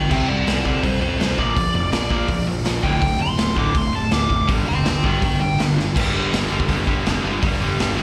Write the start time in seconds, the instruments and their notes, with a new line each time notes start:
Already playing: picked electric bass G1, lead electric guitar G5
0.09 picked electric bass C2, distorted electric guitar C3 G3 C4, lead electric guitar E5 G5, kick, crash
0.28 picked electric bass C2, distorted electric guitar C3 G3, lead electric guitar A4 D5
0.45 picked electric bass C2, distorted electric guitar C3 G3, lead electric guitar A4 D5, snare, open hi-hat
0.64 distorted electric guitar C3 G3 C4, lead electric guitar A4 D5, kick
0.83 picked electric bass C2, distorted electric guitar C3 G3, lead electric guitar A4 C5, kick, open hi-hat
1.00 picked electric bass C2, distorted electric guitar C3 G3, lead electric guitar A4 C5
1.18 picked electric bass C2, distorted electric guitar C3 G3, lead electric guitar A4 C5, snare, open hi-hat
1.37 picked electric bass A#1, distorted electric guitar A#2 F3 A#3, lead electric guitar D5, kick
1.55 picked electric bass A#1, distorted electric guitar A#2 F3, kick, open hi-hat
1.73 picked electric bass F1, distorted electric guitar A#2 F3
1.92 picked electric bass A#1, distorted electric guitar A#2 F3, snare, open hi-hat
2.10 picked electric bass A#1, distorted electric guitar A#2 F3 A#3, kick
2.28 picked electric bass A#1, distorted electric guitar A#2 F3, kick, open hi-hat
2.47 picked electric bass A#1, distorted electric guitar A#2 F3
2.64 picked electric bass A#1, distorted electric guitar A#2 F3, snare, open hi-hat
2.83 picked electric bass D1, distorted electric guitar D2 A2 D3, lead electric guitar G5, kick
3.01 picked electric bass D1, distorted electric guitar D2 A2, kick, open hi-hat
3.20 picked electric bass D1, distorted electric guitar D2 A2, lead electric guitar C6
3.37 picked electric bass D1, distorted electric guitar D2 A2, snare, open hi-hat
3.56 distorted electric guitar D2 A2 D3, lead electric guitar D6, kick
3.74 picked electric bass D1, distorted electric guitar D2 A2, lead electric guitar C6, kick, open hi-hat
3.93 picked electric bass D1, distorted electric guitar D2 A2, lead electric guitar A5
4.11 picked electric bass D1, distorted electric guitar D2 A2, lead electric guitar D6, snare, open hi-hat
4.29 picked electric bass F1, distorted electric guitar D2 A2, kick
4.48 picked electric bass G1, distorted electric guitar G2 D3 G3, kick, open hi-hat
4.66 picked electric bass D1, distorted electric guitar G2 D3, lead electric guitar G5 C6
4.84 picked electric bass G1, distorted electric guitar G2 D3, lead electric guitar G5 C6, snare, open hi-hat
5.03 picked electric bass G1, distorted electric guitar G2 D3 G3, lead electric guitar A#4 G5, kick
5.22 picked electric bass G1, distorted electric guitar G2 D3, lead electric guitar A#4 G5, kick, open hi-hat
5.41 picked electric bass G1, distorted electric guitar G2 D3, lead electric guitar G5
5.59 picked electric bass G1, distorted electric guitar G2 D3, snare, open hi-hat
5.77 distorted electric guitar G2 D3, snare
5.95 picked electric bass G1, distorted electric guitar G2 D3 G3, kick, crash
6.13 picked electric bass G1, distorted electric guitar G2 D3 G3
6.30 picked electric bass G1, distorted electric guitar G2 D3 G3, snare, open hi-hat
6.49 picked electric bass G1, distorted electric guitar G2 D3 G3
6.60 kick
6.68 picked electric bass G1, distorted electric guitar G2 D3 G3, kick, open hi-hat
6.87 picked electric bass G1, distorted electric guitar G2 D3 G3, kick
7.04 picked electric bass F1, distorted electric guitar G2 D3 G3, snare, open hi-hat
7.24 picked electric bass G1, distorted electric guitar G2 D3 G3
7.42 picked electric bass G1, distorted electric guitar G2 D3 G3, kick, open hi-hat
7.60 picked electric bass G1, distorted electric guitar G2 D3 G3
7.78 picked electric bass G1, distorted electric guitar G2 D3 G3, snare, open hi-hat
7.97 distorted electric guitar G2 D3 G3